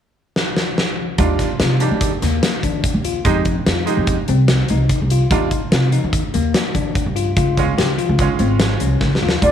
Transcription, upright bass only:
1.19 1.36 D#2 medium
1.60 1.86 C3 medium
1.91 2.08 D#3 medium
2.22 2.39 D#2 medium
2.63 2.81 D#3 medium
2.94 3.20 D#2 medium
3.25 3.59 F2 medium
3.67 3.84 F2 medium
3.97 4.14 F2 medium
4.28 4.62 C2 medium
4.70 4.87 C2 medium
5.02 5.27 C2 medium
5.31 5.48 D#2 loud
5.72 5.98 C3 medium
6.04 6.21 D#3 medium
6.35 6.51 D#2 medium
6.75 6.92 D#3 medium
7.06 7.32 G2 medium
7.37 7.71 C#2 medium
7.79 7.95 C#2 medium
8.09 8.26 C#2 medium
8.40 8.73 G#1 medium
8.81 8.99 C2 medium
9.01 9.20 C#2 medium
9.22 9.41 D#2 medium
9.42 9.52 D#2 medium

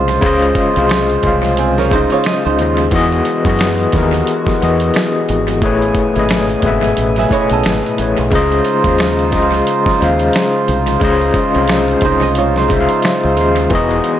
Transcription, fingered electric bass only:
0.00 0.17 C2 medium
0.23 0.51 C#2 loud
0.77 1.16 C2 loud
1.25 2.07 C2 medium
2.46 2.61 C#2 medium
2.61 2.88 D#2 medium
2.93 3.21 E2 loud
3.46 3.85 F#2 medium
3.94 4.22 D#2 medium
4.63 4.90 E2 medium
5.30 5.63 G#1 medium
5.63 5.90 A1 loud
6.16 6.55 G#1 medium
6.64 6.91 G#1 medium
6.98 7.25 A1 medium
7.32 muted fingered electric bass stroke soft
7.51 7.62 B1 medium
7.66 7.81 G#1 medium
7.99 8.15 A1 medium
8.19 8.33 B1 medium
8.33 8.60 C#2 loud
8.85 9.33 D#2 medium
9.33 9.61 C#2 medium
10.02 10.29 D#2 medium
10.69 10.96 C2 medium
11.02 11.30 C#2 loud
11.56 11.95 C2 loud
12.03 12.85 C2 medium
13.25 13.39 C#2 medium
13.39 13.66 D#2 medium
13.72 13.99 E1 loud

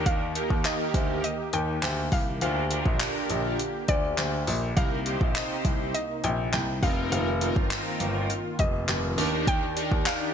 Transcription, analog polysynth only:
0.00 0.24 D4 medium
0.00 0.24 D#4 medium
0.00 0.24 G4 medium
0.00 0.24 A#4 medium
0.36 1.25 A#3 medium
0.36 1.25 D#4 medium
0.36 1.25 G4 medium
0.36 1.25 A#4 medium
2.41 2.64 D4 medium
2.41 2.64 F4 medium
2.41 2.64 G4 medium
2.41 2.64 A#4 medium
2.71 3.60 D4 medium
2.71 3.60 F4 medium
2.71 3.60 G4 medium
2.71 3.61 A#4 medium
4.77 4.99 C4 medium
4.77 4.99 D#4 medium
4.77 4.99 G4 medium
4.77 4.99 A#4 medium
5.06 5.96 C4 medium
5.06 5.96 D#4 medium
5.06 5.96 G4 medium
5.06 5.96 C5 medium
6.83 7.30 C4 medium
6.83 7.30 D#4 medium
6.83 7.30 F4 medium
6.83 7.30 A#4 medium
7.41 8.31 C4 medium
7.41 8.31 D#4 medium
7.41 8.31 F4 medium
7.41 8.31 A#4 medium
9.18 9.65 D4 medium
9.18 9.65 D#4 medium
9.18 9.65 G4 medium
9.18 9.65 A#4 medium
9.76 10.34 D4 medium
9.76 10.34 D#4 medium
9.76 10.34 G4 medium
9.76 10.34 A#4 medium

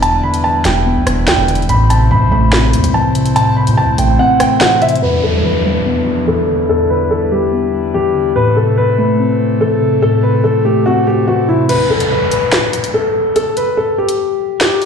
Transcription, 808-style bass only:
0.00 0.20 E1 loud
0.65 0.98 E1 loud
0.96 1.06 E2 loud
1.07 1.29 E1 loud
1.28 1.37 E2 loud
1.38 1.68 E1 loud
1.69 2.12 A1 loud
2.11 2.23 A2 loud
2.21 2.31 A1 loud
2.32 2.75 A1 loud
2.73 2.83 E2 loud
2.84 3.69 C2 loud
3.67 3.84 C3 loud
3.83 3.98 C2 loud
3.98 4.18 A1 loud

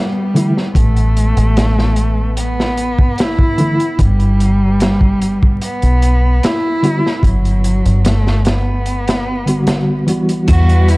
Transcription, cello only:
0.00 0.72 G3 loud
0.76 2.34 A3 loud
2.39 3.21 B3 loud
3.20 4.02 E4 loud
4.01 5.62 G3 loud
5.65 6.45 B3 loud
6.44 7.28 E4 loud
7.26 8.10 F#3 loud
8.08 8.50 A3 loud
8.48 10.09 B3 loud
10.49 10.91 F#4 loud
10.90 10.97 E4 loud

